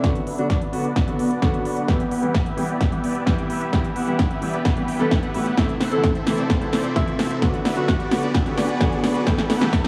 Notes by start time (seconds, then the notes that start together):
Already playing: riser
0.03 D3 F#3 B3 D4 F#4 B4 D5, kick, snare, closed hi-hat
0.15 closed hi-hat
0.27 B3 D4 F#4 B4 E5, open hi-hat
0.38 D3 F#3 B3 D4 F#4, closed hi-hat
0.50 D4, kick, snare, closed hi-hat
0.61 B3 D4 F#4 B4 D5, closed hi-hat
0.72 D3 F#3 B3 F#4, open hi-hat
0.84 B3 D4 F#4 B4 D5, closed hi-hat
0.96 B3 D4 F#4 B4 E5, kick, snare, closed hi-hat
1.07 D3 F#3 B3 F#4, closed hi-hat
1.19 B3 D4 F#4 B4 D5, open hi-hat
1.31 closed hi-hat
1.42 D3 F#3 B3 D4 F#4 B4 D5, kick, snare, closed hi-hat
1.54 closed hi-hat
1.65 B3 D4 F#4 B4 D5, open hi-hat
1.77 closed hi-hat
1.88 E3 G3 B3 E4 G4 B4 E5, kick, snare, closed hi-hat
2.00 closed hi-hat
2.11 B3 E4 G4 B4 F#5, open hi-hat
2.22 E3 G3 B3 G4, closed hi-hat
2.34 kick, snare, closed hi-hat
2.46 B3 E4 G4 B4 E5, closed hi-hat
2.57 E3 G3 B3 G4, open hi-hat
2.69 B3 E4 G4 B4 D5, closed hi-hat
2.81 B3 E4 G4 B4 F#5, kick, snare, closed hi-hat
2.92 E3 G3 B3 G4, closed hi-hat
3.04 B3 E4 G4 B4 D5, open hi-hat
3.15 closed hi-hat
3.26 E3 G3 B3 E4 G4 B4 E5, kick, snare, closed hi-hat
3.38 closed hi-hat
3.50 B3 E4 G4 B4 E5, open hi-hat
3.61 closed hi-hat
3.72 E3 G3 B3 E4 G4 B4 E5, kick, snare, closed hi-hat
3.84 closed hi-hat
3.96 B3 E4 G4 B4 F#5, open hi-hat
4.07 E3 G3 B3 G4, closed hi-hat
4.19 kick, snare, closed hi-hat
4.31 B3 E4 G4 B4 E5, closed hi-hat
4.42 E3 G3 B3 G4, open hi-hat
4.54 B3 E4 G4 B4 D5, closed hi-hat
4.65 B3 E4 G4 B4 F#5, kick, snare, closed hi-hat
4.76 E3 G3 B3 G4, closed hi-hat
4.88 B3 E4 G4 B4 G5, open hi-hat
4.99 E3 G3 B3 E4 G4 A4 B4 F#5, closed hi-hat
5.11 kick, snare, closed hi-hat
5.23 B3 E4 G4 B4 F#5, closed hi-hat
5.34 A2 E3 G3 B3 E4 F#4 G4 B4 F#5, open hi-hat
5.46 closed hi-hat
5.57 C3 E3 A3 C4 E4 A4 C5 E5, kick, snare, closed hi-hat
5.69 closed hi-hat
5.80 C4 E4 A4 C5 F#5, snare, open hi-hat
5.92 C3 E3 A3 E4 A4, closed hi-hat
6.04 kick, snare, closed hi-hat
6.15 C4 E4 A4 C5 E5, closed hi-hat
6.26 C3 E3 A3 E4, snare, open hi-hat
6.38 C4 E4 A4 C5 D5, closed hi-hat
6.50 C4 E4 A4 C5 F#5, kick, snare, closed hi-hat
6.61 C3 E3 A3 E4, closed hi-hat
6.73 C4 E4 A4 C5 D5, snare, open hi-hat
6.84 closed hi-hat
6.95 C3 E3 A3 C4 E4 A4 C5 E5, kick, snare, closed hi-hat
7.08 closed hi-hat
7.19 C4 E4 A4 C5 E5, snare, open hi-hat
7.31 closed hi-hat
7.41 D3 F#3 B3 D4 F#4 B4 D5, kick, snare, closed hi-hat
7.54 closed hi-hat
7.65 B3 D4 F#4 B4 E5, snare, open hi-hat
7.76 D3 F#3 B3 F#4, closed hi-hat
7.88 kick, snare, closed hi-hat
8.00 B3 D4 F#4 B4 D5, closed hi-hat
8.11 D3 F#3 B3 F#4, snare, open hi-hat
8.23 B3 D4 F#4 B4 D5, closed hi-hat
8.34 B3 D4 F#4 B4 E5, kick, snare, closed hi-hat
8.45 D3 F#3 B3 F#4, closed hi-hat
8.57 B3 D4 F#4 B4 D5, snare, open hi-hat
8.69 closed hi-hat
8.80 D3 F#3 B3 D4 F#4 B4 D5, kick, snare, closed hi-hat
8.92 closed hi-hat
9.04 B3 D4 F#4 B4 D5, snare, open hi-hat
9.15 closed hi-hat
9.26 E3 G3 B3 E4 G4 B4 E5, kick, snare, closed hi-hat
9.38 snare, closed hi-hat
9.50 B3 E4 G4 B4 F#5, snare, open hi-hat
9.61 E3 G3 B3 G4, snare, closed hi-hat
9.73 kick, snare, closed hi-hat
9.84 B3 E4 G4 B4 E5, snare, closed hi-hat